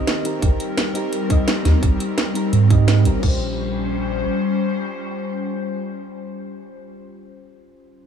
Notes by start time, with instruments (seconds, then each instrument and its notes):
Already playing: analog synth pad D#3 C4 A#4, fm electric piano C4 D#4 G4 A#4 D#5
0.07 snare, closed hi-hat
0.23 fm electric piano C4 D#4 G4 A#4, closed hi-hat
0.39 sub bass G#1, analog synth pad G3 C4 A#4, fm electric piano C4 D#4, kick, closed hi-hat
0.43 fm electric piano G4 A#4
0.60 closed hi-hat
0.78 snare, closed hi-hat
0.93 fm electric piano C4 D#4 G4 A#4, closed hi-hat
1.13 closed hi-hat
1.29 fm electric piano C4 D#4 G4 D#5, kick, closed hi-hat
1.48 snare, closed hi-hat
1.64 sub bass D#2, fm electric piano C4 D#4 G4 A#4, snare, closed hi-hat
1.80 sub bass G#1, fm electric piano C4 D#4, kick, closed hi-hat
1.84 fm electric piano G4 A#4
2.00 closed hi-hat
2.18 snare, closed hi-hat
2.34 fm electric piano C4 D#4 G4 A#4, closed hi-hat
2.53 sub bass G#2, closed hi-hat
2.69 fm electric piano C4 D#4 G4 D#5, kick, closed hi-hat
2.88 snare, closed hi-hat
3.04 sub bass G#1, fm electric piano C4 D#4 G4 A#4, closed hi-hat
3.18 fm electric piano C#4 F4
3.23 sub bass A#1, analog synth pad G3 C#4 C5, fm electric piano G4, kick, crash
3.28 fm electric piano C5